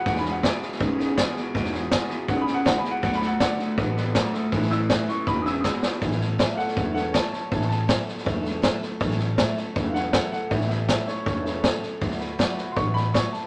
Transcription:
<<
  \new Staff \with { instrumentName = "Upright piano" } { \time 4/4 \key a \major \tempo 4 = 160 \tuplet 3/2 { fis''8 b''8 fis''8 } e''2. | r2 \tuplet 3/2 { fis''8 b''8 fis''8 fis''8 b''8 fis''8 } | \tuplet 3/2 { fis''8 b''8 fis''8 } <d'' fis''>2. | r8 e'''8 r8 cis'''8 b''8 <dis''' e'''>8 <dis''' e'''>4 |
r4. <a' f'' fis''>8 <a' fis''>8 <a' fis''>8 <cis'' a''>8 <cis'' a''>8 | <cis'' a''>8 a''2. r8 | r2 r8 <a' f'' fis''>8 <a' fis''>8 <a' fis''>8 | <g' e''>8 <g' e''>8 <g' e''>8 <e' cis''>8 <e' cis''>8 <e' cis''>8 a'4 |
r2 <c''' cis'''>8 b''8 cis'''8 a''8 | }
  \new Staff \with { instrumentName = "Steel-string acoustic guitar" } { \time 4/4 \key a \major <e gis b cis' gis'>8 <b cis' gis'>8 <e gis b cis' gis'>8 <b cis' gis'>8 <gis b cis' gis'>8 <b cis' gis'>8 <e gis b cis' gis'>8 <b cis' gis'>8 | <e gis b cis' gis'>8 <b cis' gis'>8 <e gis b cis' gis'>8 <b cis' gis'>8 <gis b cis' gis'>8 <b cis' gis'>8 <e gis b cis' gis'>8 <b cis' gis'>8 | <d fis b fis' a'>8 <b fis' a'>8 <d fis b fis' a'>8 <b fis' a'>8 <fis b fis' a'>8 <b fis' a'>8 <d fis b fis' a'>8 <b fis' a'>8 | <a, e fis a cis' a'>8 <fis a cis' a'>8 <a, e fis a cis' a'>8 <fis a cis' a'>8 <gis b cis' gis'>8 <b cis' gis'>8 <e gis b cis' gis'>8 <b cis' gis'>8 |
<a, e fis a cis' a'>8 <fis a cis' a'>8 <a, e fis a cis' a'>8 <fis a cis' a'>8 <fis a cis' a'>8 <fis a cis' a'>8 <a, e fis a cis' a'>8 <fis a cis' a'>8 | <a, e fis a cis' a'>8 <fis a cis' a'>8 <a, e fis a cis' a'>8 <fis a cis' a'>8 <fis a cis' a'>8 <fis a cis' a'>8 <a, e fis a cis' a'>8 <fis a cis' a'>8 | <a, e fis a cis' a'>8 <fis a cis' a'>8 <a, e fis a cis' a'>8 <fis a cis' a'>8 <fis a cis' a'>8 <fis a cis' a'>8 <a, e fis a cis' a'>8 <fis a cis' a'>8 | <a, e fis a cis' a'>8 <fis a cis' a'>8 <a, e fis a cis' a'>8 <fis a cis' a'>8 <fis a cis' a'>8 <fis a cis' a'>8 <a, e fis a cis' a'>8 <fis a cis' a'>8 |
<d fis a fis' b'>8 <a fis' b'>8 <d fis a fis' b'>8 <a fis' b'>8 <fis a fis' b'>8 <a fis' b'>8 <d fis a fis' b'>8 <a fis' b'>8 | }
  \new Staff \with { instrumentName = "Clean electric guitar" } { \clef bass \time 4/4 \key a \major <e, b,>8 <e, b,>8 <e, b,>8 <e, b,>8 <e, cis>8 <e, cis>8 <e, b,>8 <e, b,>8 | <e, b,>8 <e, b,>8 <e, b,>8 <e, b,>8 <e, cis>8 <e, cis>8 e,8 <e, b,>8 | <d a>8 <d a>8 <d a>8 <d a>8 <d b>8 <d b>8 <d a>8 <d a>8 | <a, e>8 <a, e>8 <a, e>8 <a, e>8 <e, b,>8 <e, cis>8 <e, b,>8 <e, b,>8 |
r1 | r1 | r1 | r1 |
r1 | }
  \new Staff \with { instrumentName = "Upright bass" } { \clef bass \time 4/4 \key a \major e,,4. r8 b,,4. r8 | e,,4. r8 b,,8 r8 cis,8 r8 | d,4. r8 a,,4. r8 | a,,4. r8 e,,4. r8 |
a,,4. r8 e,,4. r8 | a,,4. r8 e,,4. r8 | a,,4. r8 e,,4. r8 | a,,4. r8 e,,4. r8 |
d,4. r8 a,,4. r8 | }
  \new DrumStaff \with { instrumentName = "Drums" } \drummode { \time 4/4 <bd sn>16 sn16 sn8 <hhp bd sn>8 sn16 sn16 <bd sn>8 sn8 <hhp bd sn>8 sn8 | <bd sn>16 sn16 sn8 <hhp bd sn>8 sn8 <bd sn>8 sn8 <hhp bd sn>8 sn8 | <bd sn>16 sn16 sn8 <hhp bd sn>8 sn8 <bd sn>8 sn8 <hhp bd sn>8 sn8 | <bd sn>16 sn16 sn8 <hhp bd sn>8 sn8 <bd sn>8 sn8 <hhp bd sn>8 sn8 |
<bd sn>16 sn16 sn8 <hhp bd sn>8 sn16 sn16 <bd sn>8 sn8 <hhp bd sn>8 sn8 | <bd sn>16 sn16 sn8 <hhp bd sn>8 sn16 sn16 <bd sn>8 sn8 <hhp bd sn>8 sn8 | <bd sn>16 sn16 sn8 <hhp bd sn>8 sn8 <bd sn>8 sn8 <hhp bd sn>8 sn8 | <bd sn>16 sn16 sn8 <hhp bd sn>8 sn8 <bd sn>8 sn8 <hhp bd sn>8 sn8 |
<bd sn>16 sn16 sn8 <hhp bd sn>8 sn8 <bd sn>8 sn8 <hhp bd sn>8 sn8 | }
>>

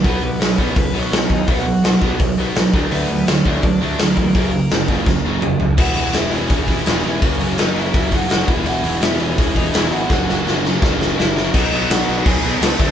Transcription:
<<
  \new Staff \with { instrumentName = "Overdriven electric guitar" } { \time 4/4 \key e \lydian \tempo 4 = 167 <b b'>4 <cis' cis''>4 <b b'>8 <cis' cis''>4 <dis' dis''>8 | <fis' fis''>2 r2 | <b b'>4 <cis' cis''>4 <d' d''>4. <ais ais'>8~ | <ais ais'>2. r4 |
<fis' fis''>4 <e' e''>8 <cis' cis''>8 <dis' dis''>8 <e' e''>8 <dis' dis''>8 <cis' cis''>8~ | <cis' cis''>4 <dis' dis''>8 <e' e''>4 <fis' fis''>4 r8 | <fis' fis''>4 <e' e''>8 <cis' cis''>4 <dis' dis''>8 <e' e''>8 <fis' fis''>8~ | <fis' fis''>4. r4. <e' e''>4 |
<dis' dis''>4 <fis' fis''>4 <gis' gis''>4 <a' a''>4 | }
  \new Staff \with { instrumentName = "Distorted electric guitar" } { \time 4/4 \key e \lydian <b, fis b>8 <b, fis>8 <b, fis>8 <b, fis b>8 <b, fis>8 <b, fis b>8 <b, fis>8 <b, fis>8 | <b, fis b>8 <b, fis>8 <b, fis>8 <b, fis b>8 <b, fis>8 <b, fis b>8 <b, fis>8 <d fis a>8 | <d fis a>8 <d fis>8 <d fis>8 <d fis a>8 <d fis>8 <d fis a>8 <d fis>8 <d fis>8 | <fis, cis fis>8 <fis, cis>8 <fis, cis>8 <fis, cis fis>8 <fis, cis>8 <fis, cis fis>8 <fis, cis>8 <fis, cis>8 |
<e b e' gis'>8 <e b e' gis'>8 <e b e' gis'>8 <e b e' gis'>8 <e b e' gis'>8 <e b e' gis'>8 <e b e' gis'>8 <e b e' gis'>8 | <fis ais cis' fis'>8 <fis ais cis' fis'>8 <fis ais cis' fis'>8 <fis ais cis' fis'>8 <fis ais cis' fis'>8 <fis ais cis' fis'>8 <fis ais cis' fis'>8 <e b e' gis'>8 | <e b e' gis'>8 <e b e' gis'>8 <e b e' gis'>8 <e b e' gis'>8 <e b e' gis'>8 <e b e' gis'>8 <e b e' gis'>8 <e b e' gis'>8 | <fis ais cis' fis'>8 <fis ais cis' fis'>8 <fis ais cis' fis'>8 <fis ais cis' fis'>8 <fis ais cis' fis'>8 <fis ais cis' fis'>8 <fis ais cis' fis'>8 <fis ais cis' fis'>8 |
<b, fis b dis'>8 <b, fis b dis'>8 <b, fis b dis'>8 <b, fis b dis'>8 <b, fis b dis'>8 <b, fis b dis'>8 <b, fis b dis'>8 <d fis a d'>8 | }
  \new Staff \with { instrumentName = "Distorted electric guitar" } { \clef bass \time 4/4 \key e \lydian <b, fis b>8 <b, fis>8 <b, fis>8 <b, fis b>8 <b, fis>8 <b, fis b>8 <b, fis>8 <b, fis>8 | <b, fis b>8 <b, fis>8 <b, fis>8 <b, fis b>8 <b, fis>8 <b, fis b>8 <b, fis>8 <d a d'>8 | <d a d'>8 <d a>8 <d a>8 <d a d'>8 <d a>8 <d a d'>8 <d a>8 <d a>8 | <fis, cis fis>8 <fis, cis>8 <fis, cis>8 <fis, cis fis>8 <fis, cis>8 <fis, cis fis>8 <fis, cis>8 <fis, cis>8 |
<e, b, e>8 <e, b, e>8 <e, b, e>8 <e, b, e>8 <e, b, e>8 <e, b, e>8 <e, b, e>8 <e, b, e>8 | <fis, cis fis>8 <fis, cis fis>8 <fis, cis fis>8 <fis, cis fis>8 <fis, cis fis>8 <fis, cis fis>8 <fis, cis fis>8 <e, b, e>8 | <e, b, e>8 <e, b, e>8 <e, b, e>8 <e, b, e>8 <e, b, e>8 <e, b, e>8 <e, b, e>8 <e, b, e>8 | <fis, cis fis>8 <fis, cis fis>8 <fis, cis fis>8 <fis, cis fis>8 <fis, cis fis>8 <fis, cis fis>8 <fis, cis fis>8 <fis, cis fis>8 |
<b, fis b>8 <b, fis b>8 <b, fis b>8 <b, fis b>8 <b, fis b>8 <b, fis b>8 <b, fis b>8 <d a d'>8 | }
  \new Staff \with { instrumentName = "Picked electric bass" } { \clef bass \time 4/4 \key e \lydian b,,8 b,,8 b,,8 b,,8 fis,,8 b,,8 b,,8 dis,8 | b,,4 b,,8 b,,8 b,,8 b,,8 b,,8 d,8 | d,8 d,8 d,8 d,8 a,,8 d,8 d,8 e,8 | fis,,4 fis,,8 fis,,8 fis,,8 fis,,8 fis,,8 fis,,8 |
e,,8 e,,8 e,,8 e,,8 e,,4 e,,8 e,,8 | fis,,8 fis,,8 fis,,4 fis,,4 fis,,8 e,,8 | e,,8 e,,8 e,,8 e,,8 e,,4 e,,8 gis,,8 | fis,,8 fis,,8 fis,,4 fis,,4 fis,,4 |
b,,8 b,,8 b,,8 b,,8 b,,8 b,,8 cis,8 d,8 | }
  \new DrumStaff \with { instrumentName = "Drums" } \drummode { \time 4/4 <hho bd>4 <hho sn>8 bd8 <hho bd>4 <hho sn>8 bd8 | <hho bd>4 <hho sn>8 bd8 <hho bd>4 <hho sn>8 bd8 | hho4 <hho sn>8 bd8 <hho bd>4 <hho sn>8 bd8 | <hho bd>4 <hho sn>8 bd8 <bd sn>4 toml8 tomfh8 |
<cymc bd>8 hho8 <hho sn>8 hho8 <hho bd>8 <hho bd>8 <hho sn>8 hho8 | <hho bd>8 hho8 <hho sn>8 hho8 <hho bd>8 <hho bd>8 <hho sn>8 <hho bd>8 | hho8 hho8 <hho sn>8 hho8 <hho bd>8 <hho bd>8 <hho sn>8 hho8 | <bd sn>8 sn8 sn8 sn8 <bd sn>8 sn8 sn8 sn8 |
<cymc bd>8 cymc8 <cymc sn>8 cymc8 <cymc bd>8 cymc8 <cymc sn>8 <cymc bd>8 | }
>>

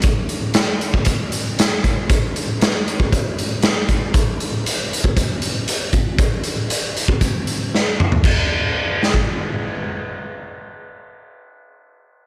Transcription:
\new DrumStaff \with { instrumentName = "Drums" } \drummode { \time 4/4 \tempo 4 = 117 <hh bd>8 hh8 <hh sn>8 hh16 bd16 <hh bd>8 hh8 <hh sn>8 <hh bd>8 | <hh bd>8 hh8 <hh sn>8 hh16 bd16 <hh bd>8 hh8 <hh sn>8 <hh bd>8 | <hh bd>8 hh8 hh8 hh16 bd16 <hh bd>8 hh8 hh8 <hh bd>8 | <hh bd>8 hh8 hh8 hh16 bd16 <hh bd>8 hh8 sn8 toml16 tomfh16 |
<cymc bd>4 r8 sn16 bd16 r4 r4 | r4 r4 r4 r4 | }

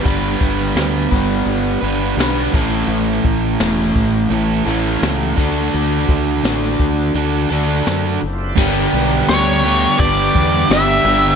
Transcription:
<<
  \new Staff \with { instrumentName = "Lead electric guitar" } { \time 4/4 \key g \lydian \tempo 4 = 85 r1 | r1 | r1 | r4 cis''4 d''4 e''4 | }
  \new Staff \with { instrumentName = "Tonewheel organ" } { \time 4/4 \key g \lydian << { r1 | r1 | r1 | <c' d' e' f' g' a' b' c'' d'' e'' f''>8 r2. r8 | } \\ { r1 | r1 | r1 | <b d' g' b'>1 | } >> }
  \new Staff \with { instrumentName = "Overdriven electric guitar" } { \time 4/4 \key g \lydian <g b d' b'>4. <g b d' b'>4. <g b d' b'>8 <a, e a cis' e' a'>8~ | <a, e a cis' e' a'>4 <a, e a cis' e' a'>4. <a, e a cis' e' a'>4 <d d' fis' a'>8~ | <d d' fis' a'>4 <d d' fis' a'>4. <d d' fis' a'>4 r8 | <g, d g b d' g'>4 <g, d g b d' g'>8 <g, d g b d' g'>8 <g, d g b d' g'>4 <g, d g b d' g'>8 <g, d g b d' g'>8 | }
  \new Staff \with { instrumentName = "Overdriven electric guitar" } { \time 4/4 \key g \lydian <g b d' b'>2~ <g b d' b'>8 <g b d' b'>8 <g b d' b'>8 <a, a cis' e' a'>8~ | <a, a cis' e' a'>2 <a, a cis' e' a'>8 <a, a cis' e' a'>4 <d d' fis' a'>8~ | <d d' fis' a'>2 <d d' fis' a'>8 <d d' fis' a'>4 r8 | <g, d g b d' g'>4 <g, d g b d' g'>8 <g, d g b d' g'>8 <g, d g b d' g'>4 <g, d g b d' g'>8 <g, d g b d' g'>8 | }
  \new Staff \with { instrumentName = "Fingered electric bass" } { \clef bass \time 4/4 \key g \lydian g,,8 g,,8 d,8 g,,8 g,,8 g,,8 b,,8 a,,8 | a,,8 a,,8 e,,8 a,,8 a,,8 a,,8 cis,8 d,8 | d,8 d,8 a,,8 d,8 d,8 d,8 fis,8 fis,,8 | g,,8 b,,8 d,4 g,,8 e,8 g,,8 g,,8 | }
  \new DrumStaff \with { instrumentName = "Drums" } \drummode { \time 4/4 <hho bd>8 <hho bd>8 <hho sn>8 <hho bd>8 hho8 hho8 <hho sn>8 <hho bd>8 | hho8 <hho bd>8 <hho sn>8 <hho bd>8 hho8 hho8 <hho sn>8 <hho bd>8 | hho8 <hho bd>8 <hho sn>16 sn16 <hho bd>8 hho8 hho8 <hho sn>8 hho8 | <cymc bd>8 cymc8 <cymc sn>8 cymc8 <cymc bd>8 <cymc bd>8 <cymc sn>8 cymc8 | }
>>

